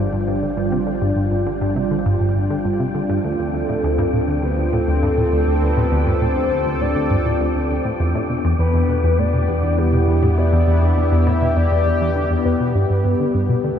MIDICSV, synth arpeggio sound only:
0, 0, Header, 1, 2, 480
1, 0, Start_track
1, 0, Tempo, 594059
1, 703, Time_signature, 4, 2, 24, 8
1, 11142, End_track
2, 0, Start_track
2, 0, Title_t, "Synth arpeggio sound"
2, 0, Program_c, 0, 84
2, 103, Note_on_c, 0, 43, 71
2, 213, Note_off_c, 0, 43, 0
2, 223, Note_on_c, 0, 43, 80
2, 337, Note_off_c, 0, 43, 0
2, 343, Note_on_c, 0, 50, 72
2, 390, Note_off_c, 0, 50, 0
2, 462, Note_on_c, 0, 43, 96
2, 577, Note_off_c, 0, 43, 0
2, 583, Note_on_c, 0, 48, 98
2, 630, Note_off_c, 0, 48, 0
2, 702, Note_on_c, 0, 50, 76
2, 749, Note_off_c, 0, 50, 0
2, 822, Note_on_c, 0, 43, 96
2, 900, Note_off_c, 0, 43, 0
2, 943, Note_on_c, 0, 43, 74
2, 1054, Note_off_c, 0, 43, 0
2, 1064, Note_on_c, 0, 43, 74
2, 1178, Note_off_c, 0, 43, 0
2, 1185, Note_on_c, 0, 50, 78
2, 1231, Note_off_c, 0, 50, 0
2, 1305, Note_on_c, 0, 43, 95
2, 1418, Note_off_c, 0, 43, 0
2, 1424, Note_on_c, 0, 48, 92
2, 1470, Note_off_c, 0, 48, 0
2, 1544, Note_on_c, 0, 50, 72
2, 1590, Note_off_c, 0, 50, 0
2, 1665, Note_on_c, 0, 43, 98
2, 1742, Note_off_c, 0, 43, 0
2, 1784, Note_on_c, 0, 43, 75
2, 1893, Note_off_c, 0, 43, 0
2, 1903, Note_on_c, 0, 43, 70
2, 2017, Note_off_c, 0, 43, 0
2, 2023, Note_on_c, 0, 50, 72
2, 2070, Note_off_c, 0, 50, 0
2, 2142, Note_on_c, 0, 43, 96
2, 2256, Note_off_c, 0, 43, 0
2, 2262, Note_on_c, 0, 48, 96
2, 2309, Note_off_c, 0, 48, 0
2, 2382, Note_on_c, 0, 50, 71
2, 2429, Note_off_c, 0, 50, 0
2, 2502, Note_on_c, 0, 43, 98
2, 2580, Note_off_c, 0, 43, 0
2, 2622, Note_on_c, 0, 38, 94
2, 2700, Note_off_c, 0, 38, 0
2, 2742, Note_on_c, 0, 38, 72
2, 2851, Note_off_c, 0, 38, 0
2, 2861, Note_on_c, 0, 38, 72
2, 2940, Note_off_c, 0, 38, 0
2, 2981, Note_on_c, 0, 45, 71
2, 3029, Note_off_c, 0, 45, 0
2, 3100, Note_on_c, 0, 38, 96
2, 3216, Note_off_c, 0, 38, 0
2, 3219, Note_on_c, 0, 43, 99
2, 3268, Note_off_c, 0, 43, 0
2, 3340, Note_on_c, 0, 45, 70
2, 3388, Note_off_c, 0, 45, 0
2, 3461, Note_on_c, 0, 38, 99
2, 3540, Note_off_c, 0, 38, 0
2, 3580, Note_on_c, 0, 38, 80
2, 3692, Note_off_c, 0, 38, 0
2, 3701, Note_on_c, 0, 38, 75
2, 3780, Note_off_c, 0, 38, 0
2, 3823, Note_on_c, 0, 45, 69
2, 3870, Note_off_c, 0, 45, 0
2, 3942, Note_on_c, 0, 38, 95
2, 4057, Note_off_c, 0, 38, 0
2, 4063, Note_on_c, 0, 43, 99
2, 4110, Note_off_c, 0, 43, 0
2, 4182, Note_on_c, 0, 45, 75
2, 4229, Note_off_c, 0, 45, 0
2, 4302, Note_on_c, 0, 38, 98
2, 4380, Note_off_c, 0, 38, 0
2, 4421, Note_on_c, 0, 38, 75
2, 4531, Note_off_c, 0, 38, 0
2, 4540, Note_on_c, 0, 38, 78
2, 4619, Note_off_c, 0, 38, 0
2, 4661, Note_on_c, 0, 45, 72
2, 4709, Note_off_c, 0, 45, 0
2, 4781, Note_on_c, 0, 38, 98
2, 4896, Note_off_c, 0, 38, 0
2, 4900, Note_on_c, 0, 43, 98
2, 4948, Note_off_c, 0, 43, 0
2, 5021, Note_on_c, 0, 45, 76
2, 5069, Note_off_c, 0, 45, 0
2, 5141, Note_on_c, 0, 38, 99
2, 5220, Note_off_c, 0, 38, 0
2, 5261, Note_on_c, 0, 38, 70
2, 5373, Note_off_c, 0, 38, 0
2, 5383, Note_on_c, 0, 38, 73
2, 5461, Note_off_c, 0, 38, 0
2, 5504, Note_on_c, 0, 45, 80
2, 5550, Note_off_c, 0, 45, 0
2, 5623, Note_on_c, 0, 38, 102
2, 5737, Note_off_c, 0, 38, 0
2, 5743, Note_on_c, 0, 43, 94
2, 5789, Note_off_c, 0, 43, 0
2, 5864, Note_on_c, 0, 45, 75
2, 5910, Note_off_c, 0, 45, 0
2, 5984, Note_on_c, 0, 38, 98
2, 6061, Note_off_c, 0, 38, 0
2, 6103, Note_on_c, 0, 38, 75
2, 6214, Note_off_c, 0, 38, 0
2, 6224, Note_on_c, 0, 38, 74
2, 6301, Note_off_c, 0, 38, 0
2, 6343, Note_on_c, 0, 45, 77
2, 6390, Note_off_c, 0, 45, 0
2, 6463, Note_on_c, 0, 40, 93
2, 6577, Note_off_c, 0, 40, 0
2, 6584, Note_on_c, 0, 45, 96
2, 6630, Note_off_c, 0, 45, 0
2, 6703, Note_on_c, 0, 47, 72
2, 6750, Note_off_c, 0, 47, 0
2, 6825, Note_on_c, 0, 40, 97
2, 6902, Note_off_c, 0, 40, 0
2, 6943, Note_on_c, 0, 40, 77
2, 7053, Note_off_c, 0, 40, 0
2, 7062, Note_on_c, 0, 40, 76
2, 7140, Note_off_c, 0, 40, 0
2, 7184, Note_on_c, 0, 47, 73
2, 7230, Note_off_c, 0, 47, 0
2, 7303, Note_on_c, 0, 40, 97
2, 7417, Note_off_c, 0, 40, 0
2, 7424, Note_on_c, 0, 45, 98
2, 7470, Note_off_c, 0, 45, 0
2, 7544, Note_on_c, 0, 47, 77
2, 7590, Note_off_c, 0, 47, 0
2, 7662, Note_on_c, 0, 40, 93
2, 7740, Note_off_c, 0, 40, 0
2, 7783, Note_on_c, 0, 40, 75
2, 7893, Note_off_c, 0, 40, 0
2, 7903, Note_on_c, 0, 40, 82
2, 7981, Note_off_c, 0, 40, 0
2, 8023, Note_on_c, 0, 47, 72
2, 8070, Note_off_c, 0, 47, 0
2, 8142, Note_on_c, 0, 40, 100
2, 8257, Note_off_c, 0, 40, 0
2, 8263, Note_on_c, 0, 45, 101
2, 8310, Note_off_c, 0, 45, 0
2, 8384, Note_on_c, 0, 47, 77
2, 8430, Note_off_c, 0, 47, 0
2, 8505, Note_on_c, 0, 40, 99
2, 8582, Note_off_c, 0, 40, 0
2, 8624, Note_on_c, 0, 40, 74
2, 8736, Note_off_c, 0, 40, 0
2, 8745, Note_on_c, 0, 40, 76
2, 8822, Note_off_c, 0, 40, 0
2, 8864, Note_on_c, 0, 47, 78
2, 8910, Note_off_c, 0, 47, 0
2, 8985, Note_on_c, 0, 40, 101
2, 9098, Note_off_c, 0, 40, 0
2, 9105, Note_on_c, 0, 45, 97
2, 9151, Note_off_c, 0, 45, 0
2, 9225, Note_on_c, 0, 47, 74
2, 9271, Note_off_c, 0, 47, 0
2, 9344, Note_on_c, 0, 40, 100
2, 9421, Note_off_c, 0, 40, 0
2, 9464, Note_on_c, 0, 40, 76
2, 9575, Note_off_c, 0, 40, 0
2, 9584, Note_on_c, 0, 40, 72
2, 9630, Note_off_c, 0, 40, 0
2, 9704, Note_on_c, 0, 52, 76
2, 9781, Note_off_c, 0, 52, 0
2, 9824, Note_on_c, 0, 50, 80
2, 9901, Note_off_c, 0, 50, 0
2, 9943, Note_on_c, 0, 40, 75
2, 9990, Note_off_c, 0, 40, 0
2, 10063, Note_on_c, 0, 40, 76
2, 10141, Note_off_c, 0, 40, 0
2, 10183, Note_on_c, 0, 47, 74
2, 10297, Note_off_c, 0, 47, 0
2, 10303, Note_on_c, 0, 43, 93
2, 10381, Note_off_c, 0, 43, 0
2, 10423, Note_on_c, 0, 43, 72
2, 10533, Note_off_c, 0, 43, 0
2, 10543, Note_on_c, 0, 43, 73
2, 10621, Note_off_c, 0, 43, 0
2, 10662, Note_on_c, 0, 50, 74
2, 10709, Note_off_c, 0, 50, 0
2, 10782, Note_on_c, 0, 43, 97
2, 10897, Note_off_c, 0, 43, 0
2, 10902, Note_on_c, 0, 47, 100
2, 10949, Note_off_c, 0, 47, 0
2, 11021, Note_on_c, 0, 50, 73
2, 11069, Note_off_c, 0, 50, 0
2, 11142, End_track
0, 0, End_of_file